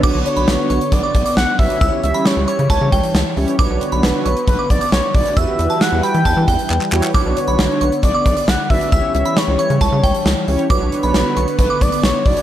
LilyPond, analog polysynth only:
\new Staff \with { instrumentName = "Analog polysynth" } { \time 4/4 \key b \minor \tempo 4 = 135 <d' fis' b' cis''>4. r2 <d' fis' b' cis''>8 | <cis' e' g' cis''>4. r2 <cis' e' g' cis''>8 | <d' fis' b' cis''>4. r2 <d' fis' b' cis''>8 | <e' fis' g' b'>4. r2 <e' fis' g' cis''>8 |
<d' fis' b' cis''>4. r2 <d' fis' b' d''>8 | <cis' e' g' cis''>4. r2 <cis' e' g' cis''>8 | <d' fis' b' cis''>4. r2 <d' fis' b' cis''>8 | }